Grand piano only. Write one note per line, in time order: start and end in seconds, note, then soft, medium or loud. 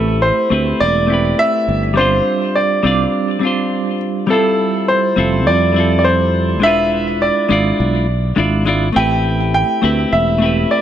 0.00 0.24 A4 medium
0.22 0.82 C5 medium
0.80 1.41 D5 loud
1.39 1.93 E5 loud
1.97 2.57 C5 medium
2.56 3.97 D5 medium
4.30 4.85 A4 medium
4.88 5.49 C5 medium
5.47 5.97 D5 medium
5.99 6.05 D5 medium
6.04 6.65 C5 medium
6.63 7.23 E5 loud
7.22 8.63 D5 medium
8.96 9.53 G5 loud
9.54 10.15 G5 medium
10.13 10.73 E5 medium
10.71 10.82 D5 medium